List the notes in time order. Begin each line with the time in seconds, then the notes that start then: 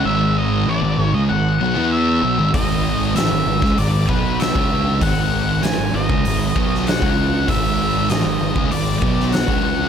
0.05 G#1 G#2 D#3 G#3 E5
0.38 D#5
0.66 A1 A2 E3 D5
0.82 G#1 G#2 D#3
0.98 G#1 G#2 D#3
1.14 C#2 C#3 G#3 D#5
1.29 G#1 G#2 D#3 F#5
1.60 B1 B2 F#3
1.75 E2 E3 B3 E4
1.92 E5
2.22 B1 B2 F#3
2.37 G#1 G#2 D#3
2.53 G#1 G#2 D#3 G#3 D#5, kick, open hi-hat
3.15 A1 A2 E3 E5, snare, open hi-hat
3.31 G#1 G#2 D#3
3.46 G#1 G#2 D#3
3.62 C#2 C#3 G#3, kick, snare
3.76 G#1 G#2 D#3 D5, open hi-hat
4.09 B1 B2 F#3 B3 B4, kick
4.40 E5, snare, open hi-hat
4.55 C#2 C#3 G#3 C#4, kick
5.01 G#1 G#2 D#3 G#3 F#5, kick, open hi-hat
5.63 A1 A2 E3 G#5, snare, open hi-hat
5.78 G#1 G#2 D#3
5.94 G#1 G#2 D#3 D#5
6.09 C#2 C#3 G#3, kick
6.25 G#1 G#2 D#3, open hi-hat
6.56 B1 B2 F#3 B3, kick
6.75 snare
6.87 F#5, snare, open hi-hat
7.01 C#2 C#3 G#3 C#4, kick
7.48 G#1 G#2 D#3 G#3 E5, kick, open hi-hat
8.09 A1 A2 E3 D#5, snare, open hi-hat
8.25 G#1 G#2 D#3
8.41 G#1 G#2 D#3
8.56 C#2 C#3 G#3, kick
8.71 G#1 G#2 D#3 D5, open hi-hat
9.02 B1 B2 F#3 B3, kick
9.20 snare
9.32 F#5, snare, open hi-hat
9.48 C#2 C#3 G#3 C#4, kick